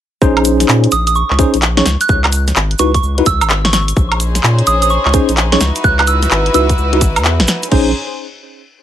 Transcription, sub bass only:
0, 0, Header, 1, 2, 480
1, 0, Start_track
1, 0, Tempo, 468750
1, 221, Time_signature, 4, 2, 24, 8
1, 9040, End_track
2, 0, Start_track
2, 0, Title_t, "Sub bass"
2, 0, Program_c, 0, 38
2, 222, Note_on_c, 0, 34, 100
2, 662, Note_off_c, 0, 34, 0
2, 703, Note_on_c, 0, 46, 107
2, 892, Note_off_c, 0, 46, 0
2, 943, Note_on_c, 0, 34, 80
2, 1264, Note_off_c, 0, 34, 0
2, 1338, Note_on_c, 0, 37, 108
2, 1486, Note_off_c, 0, 37, 0
2, 1577, Note_on_c, 0, 34, 94
2, 1862, Note_off_c, 0, 34, 0
2, 1903, Note_on_c, 0, 37, 104
2, 2012, Note_off_c, 0, 37, 0
2, 2142, Note_on_c, 0, 37, 95
2, 2582, Note_off_c, 0, 37, 0
2, 2622, Note_on_c, 0, 32, 106
2, 2811, Note_off_c, 0, 32, 0
2, 2861, Note_on_c, 0, 37, 81
2, 3051, Note_off_c, 0, 37, 0
2, 3101, Note_on_c, 0, 37, 83
2, 3291, Note_off_c, 0, 37, 0
2, 3341, Note_on_c, 0, 37, 100
2, 3495, Note_on_c, 0, 32, 99
2, 3510, Note_off_c, 0, 37, 0
2, 4021, Note_off_c, 0, 32, 0
2, 4062, Note_on_c, 0, 34, 96
2, 4502, Note_off_c, 0, 34, 0
2, 4541, Note_on_c, 0, 46, 109
2, 4731, Note_off_c, 0, 46, 0
2, 4781, Note_on_c, 0, 34, 81
2, 5103, Note_off_c, 0, 34, 0
2, 5176, Note_on_c, 0, 37, 111
2, 5325, Note_off_c, 0, 37, 0
2, 5414, Note_on_c, 0, 34, 98
2, 5700, Note_off_c, 0, 34, 0
2, 5742, Note_on_c, 0, 37, 105
2, 5851, Note_off_c, 0, 37, 0
2, 5982, Note_on_c, 0, 37, 97
2, 6422, Note_off_c, 0, 37, 0
2, 6462, Note_on_c, 0, 32, 108
2, 6652, Note_off_c, 0, 32, 0
2, 6703, Note_on_c, 0, 37, 84
2, 6892, Note_off_c, 0, 37, 0
2, 6943, Note_on_c, 0, 37, 86
2, 7182, Note_on_c, 0, 32, 96
2, 7197, Note_off_c, 0, 37, 0
2, 7338, Note_on_c, 0, 40, 80
2, 7353, Note_off_c, 0, 32, 0
2, 7578, Note_on_c, 0, 32, 104
2, 7593, Note_off_c, 0, 40, 0
2, 7637, Note_off_c, 0, 32, 0
2, 7903, Note_on_c, 0, 34, 98
2, 8125, Note_off_c, 0, 34, 0
2, 9040, End_track
0, 0, End_of_file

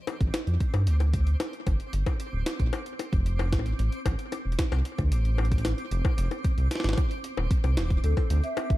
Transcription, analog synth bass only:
0, 0, Header, 1, 2, 480
1, 0, Start_track
1, 0, Key_signature, -1, "minor"
1, 0, Tempo, 530973
1, 1506, Time_signature, 4, 2, 24, 8
1, 7934, End_track
2, 0, Start_track
2, 0, Title_t, "Analog synth bass"
2, 0, Program_c, 0, 38
2, 186, Note_on_c, 0, 33, 87
2, 280, Note_off_c, 0, 33, 0
2, 426, Note_on_c, 0, 41, 85
2, 520, Note_off_c, 0, 41, 0
2, 666, Note_on_c, 0, 43, 94
2, 785, Note_on_c, 0, 38, 96
2, 799, Note_off_c, 0, 43, 0
2, 1224, Note_off_c, 0, 38, 0
2, 1506, Note_on_c, 0, 31, 97
2, 1600, Note_off_c, 0, 31, 0
2, 1746, Note_on_c, 0, 31, 100
2, 1840, Note_off_c, 0, 31, 0
2, 2106, Note_on_c, 0, 26, 85
2, 2200, Note_off_c, 0, 26, 0
2, 2346, Note_on_c, 0, 34, 87
2, 2440, Note_off_c, 0, 34, 0
2, 2826, Note_on_c, 0, 29, 86
2, 3186, Note_on_c, 0, 33, 85
2, 3200, Note_off_c, 0, 29, 0
2, 3374, Note_off_c, 0, 33, 0
2, 3426, Note_on_c, 0, 33, 100
2, 3520, Note_off_c, 0, 33, 0
2, 3666, Note_on_c, 0, 33, 103
2, 3760, Note_off_c, 0, 33, 0
2, 4026, Note_on_c, 0, 28, 86
2, 4120, Note_off_c, 0, 28, 0
2, 4265, Note_on_c, 0, 36, 87
2, 4360, Note_off_c, 0, 36, 0
2, 4506, Note_on_c, 0, 38, 94
2, 4625, Note_on_c, 0, 33, 92
2, 4639, Note_off_c, 0, 38, 0
2, 5184, Note_off_c, 0, 33, 0
2, 5346, Note_on_c, 0, 29, 101
2, 5440, Note_off_c, 0, 29, 0
2, 5585, Note_on_c, 0, 29, 103
2, 5680, Note_off_c, 0, 29, 0
2, 5946, Note_on_c, 0, 36, 87
2, 6040, Note_off_c, 0, 36, 0
2, 6186, Note_on_c, 0, 32, 84
2, 6280, Note_off_c, 0, 32, 0
2, 6666, Note_on_c, 0, 27, 86
2, 6760, Note_off_c, 0, 27, 0
2, 6906, Note_on_c, 0, 36, 88
2, 7026, Note_on_c, 0, 27, 81
2, 7040, Note_off_c, 0, 36, 0
2, 7214, Note_off_c, 0, 27, 0
2, 7266, Note_on_c, 0, 38, 95
2, 7360, Note_off_c, 0, 38, 0
2, 7506, Note_on_c, 0, 38, 99
2, 7600, Note_off_c, 0, 38, 0
2, 7866, Note_on_c, 0, 33, 83
2, 7934, Note_off_c, 0, 33, 0
2, 7934, End_track
0, 0, End_of_file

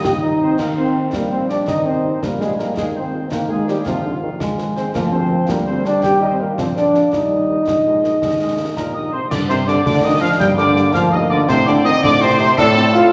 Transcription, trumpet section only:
0, 0, Header, 1, 2, 480
1, 0, Start_track
1, 0, Tempo, 363416
1, 778, Time_signature, 6, 3, 24, 8
1, 17336, End_track
2, 0, Start_track
2, 0, Title_t, "Trumpet section"
2, 0, Program_c, 0, 61
2, 0, Note_on_c, 0, 75, 116
2, 479, Note_off_c, 0, 75, 0
2, 541, Note_on_c, 0, 72, 69
2, 762, Note_off_c, 0, 72, 0
2, 777, Note_on_c, 0, 70, 52
2, 1000, Note_off_c, 0, 70, 0
2, 1012, Note_on_c, 0, 72, 53
2, 1460, Note_off_c, 0, 72, 0
2, 1495, Note_on_c, 0, 70, 47
2, 1603, Note_off_c, 0, 70, 0
2, 1735, Note_on_c, 0, 72, 51
2, 1843, Note_off_c, 0, 72, 0
2, 1967, Note_on_c, 0, 74, 58
2, 2076, Note_off_c, 0, 74, 0
2, 2209, Note_on_c, 0, 75, 66
2, 2435, Note_off_c, 0, 75, 0
2, 2452, Note_on_c, 0, 72, 55
2, 2931, Note_on_c, 0, 70, 45
2, 2933, Note_off_c, 0, 72, 0
2, 3172, Note_off_c, 0, 70, 0
2, 3172, Note_on_c, 0, 68, 54
2, 3280, Note_off_c, 0, 68, 0
2, 3411, Note_on_c, 0, 70, 54
2, 3519, Note_off_c, 0, 70, 0
2, 3651, Note_on_c, 0, 68, 59
2, 3760, Note_off_c, 0, 68, 0
2, 3894, Note_on_c, 0, 72, 56
2, 4340, Note_off_c, 0, 72, 0
2, 4373, Note_on_c, 0, 70, 51
2, 4481, Note_off_c, 0, 70, 0
2, 4608, Note_on_c, 0, 68, 59
2, 4834, Note_off_c, 0, 68, 0
2, 4853, Note_on_c, 0, 67, 59
2, 5084, Note_on_c, 0, 65, 59
2, 5093, Note_off_c, 0, 67, 0
2, 5996, Note_off_c, 0, 65, 0
2, 6289, Note_on_c, 0, 72, 61
2, 6514, Note_off_c, 0, 72, 0
2, 6527, Note_on_c, 0, 70, 63
2, 6636, Note_off_c, 0, 70, 0
2, 6758, Note_on_c, 0, 72, 58
2, 7211, Note_off_c, 0, 72, 0
2, 7246, Note_on_c, 0, 70, 57
2, 7355, Note_off_c, 0, 70, 0
2, 7489, Note_on_c, 0, 72, 58
2, 7714, Note_off_c, 0, 72, 0
2, 7721, Note_on_c, 0, 74, 66
2, 7960, Note_on_c, 0, 79, 74
2, 7967, Note_off_c, 0, 74, 0
2, 8071, Note_off_c, 0, 79, 0
2, 8200, Note_on_c, 0, 75, 55
2, 8315, Note_on_c, 0, 72, 57
2, 8318, Note_off_c, 0, 75, 0
2, 8373, Note_off_c, 0, 72, 0
2, 8442, Note_on_c, 0, 70, 51
2, 8553, Note_off_c, 0, 70, 0
2, 8680, Note_on_c, 0, 72, 50
2, 8791, Note_off_c, 0, 72, 0
2, 8923, Note_on_c, 0, 74, 55
2, 9375, Note_off_c, 0, 74, 0
2, 9411, Note_on_c, 0, 75, 56
2, 11573, Note_off_c, 0, 75, 0
2, 11578, Note_on_c, 0, 70, 62
2, 11800, Note_off_c, 0, 70, 0
2, 11810, Note_on_c, 0, 75, 64
2, 12046, Note_on_c, 0, 72, 67
2, 12052, Note_off_c, 0, 75, 0
2, 12156, Note_off_c, 0, 72, 0
2, 12282, Note_on_c, 0, 74, 86
2, 12393, Note_off_c, 0, 74, 0
2, 12529, Note_on_c, 0, 72, 90
2, 12755, Note_off_c, 0, 72, 0
2, 12767, Note_on_c, 0, 74, 97
2, 12998, Note_off_c, 0, 74, 0
2, 13014, Note_on_c, 0, 74, 88
2, 13237, Note_off_c, 0, 74, 0
2, 13260, Note_on_c, 0, 75, 97
2, 13486, Note_on_c, 0, 77, 95
2, 13497, Note_off_c, 0, 75, 0
2, 13596, Note_off_c, 0, 77, 0
2, 13727, Note_on_c, 0, 79, 96
2, 13837, Note_off_c, 0, 79, 0
2, 13964, Note_on_c, 0, 74, 86
2, 14416, Note_off_c, 0, 74, 0
2, 14440, Note_on_c, 0, 77, 84
2, 14551, Note_off_c, 0, 77, 0
2, 14685, Note_on_c, 0, 75, 90
2, 14913, Note_off_c, 0, 75, 0
2, 14925, Note_on_c, 0, 74, 102
2, 15035, Note_off_c, 0, 74, 0
2, 15161, Note_on_c, 0, 72, 109
2, 15390, Note_off_c, 0, 72, 0
2, 15407, Note_on_c, 0, 74, 104
2, 15645, Note_on_c, 0, 75, 119
2, 15651, Note_off_c, 0, 74, 0
2, 15873, Note_off_c, 0, 75, 0
2, 15889, Note_on_c, 0, 74, 108
2, 16115, Note_off_c, 0, 74, 0
2, 16134, Note_on_c, 0, 72, 108
2, 16358, Note_off_c, 0, 72, 0
2, 16372, Note_on_c, 0, 72, 113
2, 16481, Note_off_c, 0, 72, 0
2, 16610, Note_on_c, 0, 69, 127
2, 17282, Note_off_c, 0, 69, 0
2, 17336, End_track
0, 0, End_of_file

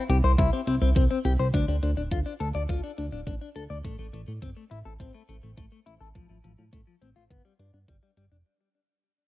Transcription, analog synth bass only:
0, 0, Header, 1, 2, 480
1, 0, Start_track
1, 0, Tempo, 576923
1, 1279, Time_signature, 4, 2, 24, 8
1, 7720, End_track
2, 0, Start_track
2, 0, Title_t, "Analog synth bass"
2, 0, Program_c, 0, 38
2, 79, Note_on_c, 0, 36, 90
2, 177, Note_off_c, 0, 36, 0
2, 199, Note_on_c, 0, 36, 84
2, 297, Note_off_c, 0, 36, 0
2, 319, Note_on_c, 0, 36, 100
2, 417, Note_off_c, 0, 36, 0
2, 558, Note_on_c, 0, 36, 91
2, 657, Note_off_c, 0, 36, 0
2, 679, Note_on_c, 0, 36, 81
2, 777, Note_off_c, 0, 36, 0
2, 799, Note_on_c, 0, 36, 101
2, 897, Note_off_c, 0, 36, 0
2, 1040, Note_on_c, 0, 36, 96
2, 1138, Note_off_c, 0, 36, 0
2, 1160, Note_on_c, 0, 36, 82
2, 1258, Note_off_c, 0, 36, 0
2, 1279, Note_on_c, 0, 38, 96
2, 1377, Note_off_c, 0, 38, 0
2, 1400, Note_on_c, 0, 38, 77
2, 1498, Note_off_c, 0, 38, 0
2, 1520, Note_on_c, 0, 38, 94
2, 1618, Note_off_c, 0, 38, 0
2, 1640, Note_on_c, 0, 26, 79
2, 1737, Note_off_c, 0, 26, 0
2, 1759, Note_on_c, 0, 38, 99
2, 1857, Note_off_c, 0, 38, 0
2, 2001, Note_on_c, 0, 38, 92
2, 2098, Note_off_c, 0, 38, 0
2, 2121, Note_on_c, 0, 38, 80
2, 2218, Note_off_c, 0, 38, 0
2, 2240, Note_on_c, 0, 38, 102
2, 2338, Note_off_c, 0, 38, 0
2, 2483, Note_on_c, 0, 38, 92
2, 2579, Note_off_c, 0, 38, 0
2, 2601, Note_on_c, 0, 26, 81
2, 2698, Note_off_c, 0, 26, 0
2, 2720, Note_on_c, 0, 33, 101
2, 2817, Note_off_c, 0, 33, 0
2, 2961, Note_on_c, 0, 38, 93
2, 3058, Note_off_c, 0, 38, 0
2, 3080, Note_on_c, 0, 38, 82
2, 3178, Note_off_c, 0, 38, 0
2, 3200, Note_on_c, 0, 33, 95
2, 3298, Note_off_c, 0, 33, 0
2, 3320, Note_on_c, 0, 33, 78
2, 3417, Note_off_c, 0, 33, 0
2, 3438, Note_on_c, 0, 33, 95
2, 3537, Note_off_c, 0, 33, 0
2, 3560, Note_on_c, 0, 45, 81
2, 3657, Note_off_c, 0, 45, 0
2, 3680, Note_on_c, 0, 31, 102
2, 3777, Note_off_c, 0, 31, 0
2, 3920, Note_on_c, 0, 33, 93
2, 4018, Note_off_c, 0, 33, 0
2, 4040, Note_on_c, 0, 33, 81
2, 4138, Note_off_c, 0, 33, 0
2, 4160, Note_on_c, 0, 33, 100
2, 4257, Note_off_c, 0, 33, 0
2, 4400, Note_on_c, 0, 33, 94
2, 4497, Note_off_c, 0, 33, 0
2, 4520, Note_on_c, 0, 33, 81
2, 4618, Note_off_c, 0, 33, 0
2, 4639, Note_on_c, 0, 33, 98
2, 4737, Note_off_c, 0, 33, 0
2, 4880, Note_on_c, 0, 33, 93
2, 4977, Note_off_c, 0, 33, 0
2, 4999, Note_on_c, 0, 33, 80
2, 5097, Note_off_c, 0, 33, 0
2, 5119, Note_on_c, 0, 33, 98
2, 5217, Note_off_c, 0, 33, 0
2, 5241, Note_on_c, 0, 33, 77
2, 5338, Note_off_c, 0, 33, 0
2, 5361, Note_on_c, 0, 33, 97
2, 5458, Note_off_c, 0, 33, 0
2, 5480, Note_on_c, 0, 45, 78
2, 5577, Note_off_c, 0, 45, 0
2, 5599, Note_on_c, 0, 33, 101
2, 5697, Note_off_c, 0, 33, 0
2, 5840, Note_on_c, 0, 33, 95
2, 5938, Note_off_c, 0, 33, 0
2, 5960, Note_on_c, 0, 33, 79
2, 6058, Note_off_c, 0, 33, 0
2, 6079, Note_on_c, 0, 31, 98
2, 6177, Note_off_c, 0, 31, 0
2, 6318, Note_on_c, 0, 43, 90
2, 6417, Note_off_c, 0, 43, 0
2, 6438, Note_on_c, 0, 43, 79
2, 6536, Note_off_c, 0, 43, 0
2, 6559, Note_on_c, 0, 31, 100
2, 6657, Note_off_c, 0, 31, 0
2, 6798, Note_on_c, 0, 31, 93
2, 6897, Note_off_c, 0, 31, 0
2, 6919, Note_on_c, 0, 29, 81
2, 7017, Note_off_c, 0, 29, 0
2, 7720, End_track
0, 0, End_of_file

